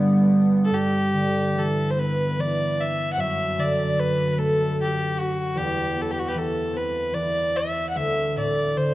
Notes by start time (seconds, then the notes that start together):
Already playing: G2 D3 G3 B3
0.65 A4
0.70 G2
0.75 G4
1.13 D3
1.55 E3 A4
1.91 C5
1.96 B3 B4
2.38 E3 D5
2.81 E5
3.13 F#5
3.17 F#2 E5
3.57 D3 D5
4.00 B4
4.32 B4
4.37 A3 A4
4.82 G4
5.18 F#4
5.55 E2 G4
5.95 B3
6.01 A4
6.11 G4
6.19 F#4
6.28 G4 B4
6.34 E3 A4
6.73 C4 B4
7.14 E3 D5
7.57 E5
7.89 F#5
7.95 D2 E5
8.36 A2 D5
8.76 D3 C5